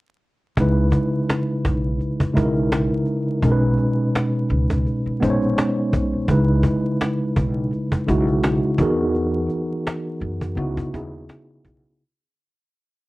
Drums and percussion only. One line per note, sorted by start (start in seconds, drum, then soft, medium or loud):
0.57 cajon bass loud
0.92 cajon bass medium
1.29 cajon slap medium
1.29 cajon slap loud
1.65 cajon bass loud
2.01 cajon slap soft
2.20 cajon bass loud
2.37 cajon bass medium
2.56 cajon slap soft
2.72 cajon slap medium
2.72 cajon slap loud
3.06 cajon slap soft
3.43 cajon bass loud
3.78 cajon slap soft
4.15 cajon slap medium
4.15 cajon slap loud
4.49 cajon slap soft
4.70 cajon bass medium
4.87 cajon slap soft
5.23 cajon bass medium
5.42 cajon slap soft
5.58 cajon slap medium
5.58 cajon slap loud
5.93 cajon bass medium
6.28 cajon bass loud
6.63 cajon bass medium
7.01 cajon slap medium
7.01 cajon slap loud
7.36 cajon bass loud
7.73 cajon slap soft
7.92 cajon bass loud
8.08 cajon bass medium
8.28 cajon slap soft
8.44 cajon slap medium
8.44 cajon slap loud
8.78 cajon bass medium
9.14 cajon slap soft
9.49 cajon slap soft
9.87 cajon slap medium
9.87 cajon slap loud
10.20 cajon slap soft
10.41 cajon bass medium
10.58 cajon slap soft
10.77 cajon bass loud
10.94 cajon bass medium
11.13 cajon slap soft
11.29 cajon slap medium
11.29 cajon slap loud
11.64 cajon bass medium